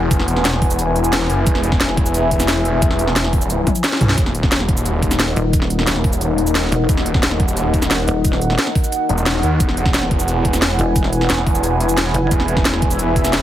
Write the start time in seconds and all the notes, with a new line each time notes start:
Already playing: E1 E4 B4 F#5 G#5
0.11 kick, closed hi-hat, shaker
0.20 snare
0.28 closed hi-hat, shaker
0.36 snare
0.45 E1, snare, closed hi-hat, shaker
0.53 snare
0.62 kick, open hi-hat
0.70 shaker
0.79 closed hi-hat, shaker
0.96 closed hi-hat, shaker
1.04 shaker
1.13 snare, closed hi-hat, shaker
1.21 snare
1.30 F#1, closed hi-hat, shaker
1.47 E1 E5, kick, closed hi-hat, shaker
1.55 snare
1.64 E1, closed hi-hat, shaker
1.72 kick, snare
1.80 E1, snare, closed hi-hat, shaker
1.89 snare
1.97 kick, closed hi-hat
2.06 shaker
2.14 closed hi-hat, shaker
2.31 kick, closed hi-hat, shaker
2.40 snare, shaker
2.48 snare, closed hi-hat, shaker
2.65 E1, closed hi-hat, shaker
2.82 kick, closed hi-hat, shaker
2.91 snare
2.99 closed hi-hat, shaker
3.08 snare
3.16 E1, snare, closed hi-hat, shaker
3.25 snare
3.33 kick, open hi-hat, shaker
3.41 shaker
3.50 closed hi-hat, shaker
3.67 kick, closed hi-hat, high tom, shaker
3.75 shaker
3.84 snare, closed hi-hat, shaker
3.92 snare
4.01 B1, closed hi-hat, mid tom, shaker
4.09 snare
4.18 D#1 D#4 A#4 D#5 F#5, kick, closed hi-hat, shaker
4.26 snare
4.35 D#1, closed hi-hat, shaker
4.43 kick, snare
4.52 D#1, snare, closed hi-hat, shaker
4.60 snare
4.69 kick, closed hi-hat
4.77 shaker
4.86 closed hi-hat, shaker
5.03 kick, closed hi-hat, shaker
5.11 snare, shaker
5.19 snare, closed hi-hat, shaker
5.36 D#1, closed hi-hat, shaker
5.53 kick, closed hi-hat, shaker
5.62 snare
5.70 closed hi-hat, shaker
5.79 snare
5.87 D#1, snare, closed hi-hat, shaker
5.96 snare
6.04 kick, open hi-hat
6.13 shaker
6.21 closed hi-hat, shaker
6.38 closed hi-hat, shaker
6.47 shaker
6.55 snare, closed hi-hat, shaker
6.64 snare
6.72 E1, closed hi-hat, shaker
6.89 D#1, kick, closed hi-hat, shaker
6.97 snare
7.06 D#1, closed hi-hat, shaker
7.14 kick, snare
7.23 D#1, snare, closed hi-hat, shaker
7.31 snare
7.40 kick, closed hi-hat
7.48 shaker
7.57 closed hi-hat, shaker
7.74 kick, closed hi-hat, shaker
7.82 snare, shaker
7.91 snare, closed hi-hat, shaker
8.08 D#1, closed hi-hat, shaker
8.25 kick, closed hi-hat, shaker
8.33 snare
8.42 closed hi-hat, shaker
8.50 snare
8.58 snare, closed hi-hat, shaker
8.67 snare
8.75 kick, open hi-hat
8.84 shaker
8.92 closed hi-hat, shaker
9.09 E1, closed hi-hat, shaker
9.18 shaker
9.26 snare, closed hi-hat, shaker
9.35 snare
9.43 D#2, closed hi-hat, shaker
9.60 E1 E4 B4 G#5, kick, closed hi-hat, shaker
9.69 snare
9.77 E1, closed hi-hat, shaker
9.86 kick, snare
9.94 E1, snare, closed hi-hat, shaker
10.03 snare
10.11 kick, closed hi-hat
10.20 shaker
10.28 closed hi-hat, shaker
10.45 kick, closed hi-hat, shaker
10.53 snare, shaker
10.62 snare, closed hi-hat, shaker
10.79 E1, closed hi-hat, shaker
10.96 kick, closed hi-hat, shaker
11.04 snare
11.13 closed hi-hat, shaker
11.21 snare
11.30 E1, snare, closed hi-hat, shaker
11.38 snare
11.47 kick, open hi-hat
11.55 shaker
11.64 closed hi-hat, shaker
11.80 closed hi-hat, shaker
11.89 shaker
11.97 snare, closed hi-hat, shaker
12.06 snare
12.14 F#1, closed hi-hat, shaker
12.31 E1 E5, kick, closed hi-hat, shaker
12.40 snare
12.48 E1, closed hi-hat, shaker
12.57 kick, snare
12.65 E1, snare, closed hi-hat, shaker
12.74 snare
12.82 kick, closed hi-hat
12.91 shaker
12.99 closed hi-hat, shaker
13.16 kick, closed hi-hat, shaker
13.25 snare, shaker
13.33 snare, closed hi-hat, shaker